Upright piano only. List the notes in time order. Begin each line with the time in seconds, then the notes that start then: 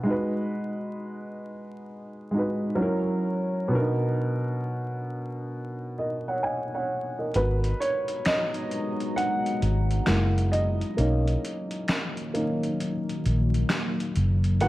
0.03 G#3 D#4
0.07 F#4 B4
2.31 G#3 D#4
2.36 F#4 B4
2.76 F#3 C#4
2.80 E4 A#4
3.68 B2 B3
3.73 D4 A#4
3.79 D#4
5.98 A#4 D#5
6.28 C#5 F#5
6.43 D#5 G#5
6.75 C#5 F#5
7.18 A#4 D#5
7.35 B3 F#4 A#4 B4
7.80 C#5
8.26 D#5
9.16 F#5
10.07 G#3 A#3 E4
10.52 D#5
10.97 A#3 C#4 D#4
12.34 A#3 C#4 D#4
14.61 A#3 B3 F#4 F#5